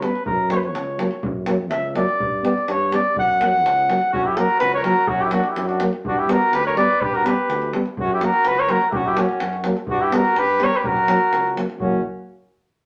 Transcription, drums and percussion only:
0.02 davul high
0.15 davul high
0.26 davul low
0.50 davul high
0.63 davul high
0.75 davul high
0.99 davul high
1.11 davul high
1.23 davul low
1.46 davul high
1.71 davul high
1.96 davul high
2.09 davul high
2.20 davul low
2.45 davul high
2.58 davul high
2.68 davul high
2.92 davul high
3.04 davul high
3.16 davul low
3.29 davul high
3.41 davul high
3.54 davul high
3.66 davul high
3.79 davul high
3.90 davul high
4.01 davul high
4.14 davul low
4.37 davul high
4.49 davul high
4.60 davul high
4.72 davul high
4.84 davul high
4.96 davul high
5.07 davul low
5.31 davul high
5.44 davul high
5.56 davul high
5.69 davul high
5.80 davul high
5.93 davul high
6.05 davul low
6.29 davul high
6.42 davul high
6.53 davul high
6.66 davul high
6.77 davul high
6.90 davul high
7.01 davul low
7.15 davul high
7.26 davul high
7.50 davul high
7.62 davul high
7.73 davul high
7.86 davul high
7.97 davul low
8.21 davul high
8.34 davul high
8.45 davul high
8.57 davul high
8.69 davul high
8.81 davul high
8.92 davul low
9.17 davul high
9.29 davul high
9.40 davul high
9.53 davul high
9.64 davul high
9.77 davul high
9.87 davul low
10.12 davul high
10.25 davul high
10.36 davul high
10.49 davul high
10.60 davul high
10.73 davul high
10.84 davul low
10.96 davul high
11.08 davul high
11.33 davul high
11.46 davul high
11.57 davul high
11.70 davul high
11.80 davul low

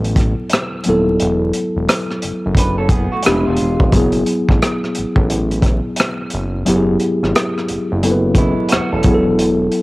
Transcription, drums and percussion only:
0.05 closed hi-hat
0.16 kick, cross-stick, closed hi-hat
0.50 cross-stick, closed hi-hat
0.84 closed hi-hat
1.20 closed hi-hat
1.53 closed hi-hat
1.89 cross-stick, closed hi-hat
2.11 cross-stick
2.22 closed hi-hat
2.55 kick, closed hi-hat
2.89 kick, closed hi-hat
3.23 cross-stick, closed hi-hat
3.56 closed hi-hat
3.80 kick
3.92 kick, closed hi-hat
4.12 closed hi-hat
4.26 closed hi-hat
4.49 kick, cross-stick
4.62 cross-stick, closed hi-hat
4.84 cross-stick
4.95 closed hi-hat
5.16 kick
5.30 closed hi-hat
5.51 closed hi-hat
5.62 kick, cross-stick, closed hi-hat
5.96 cross-stick, closed hi-hat
6.30 closed hi-hat
6.66 closed hi-hat
7.00 closed hi-hat
7.24 cross-stick
7.35 cross-stick, closed hi-hat
7.58 cross-stick
7.68 closed hi-hat
8.03 closed hi-hat
8.35 kick, closed hi-hat
8.69 cross-stick, closed hi-hat
9.03 kick, closed hi-hat
9.39 closed hi-hat
9.72 closed hi-hat

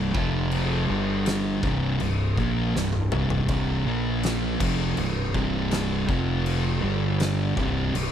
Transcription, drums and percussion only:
0.15 kick
0.51 crash
1.26 snare, crash
1.63 kick
2.00 crash
2.37 kick
2.76 snare
2.93 high tom
3.12 mid tom
3.30 floor tom
3.48 kick, crash
4.23 snare, crash
4.60 kick, crash
4.97 crash
5.34 kick
5.71 snare, crash
6.09 kick
6.46 crash
7.20 snare, crash
7.57 kick
7.95 crash

